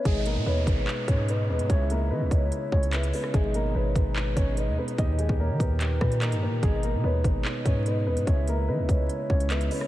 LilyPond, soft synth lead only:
\new Staff \with { instrumentName = "Soft synth lead" } { \time 4/4 \key gis \minor \tempo 4 = 146 dis''4 cis''8 b'4. dis''8 b'8 | e''4 dis''8 cis''4. e''8 cis''8 | dis''4 cis''8 b'4. dis''8 b'8 | dis''4 cis''8 b'4. dis''8 ais'8 |
dis''4 cis''8 b'4. dis''8 b'8 | e''4 dis''8 cis''4. e''8 cis''8 | }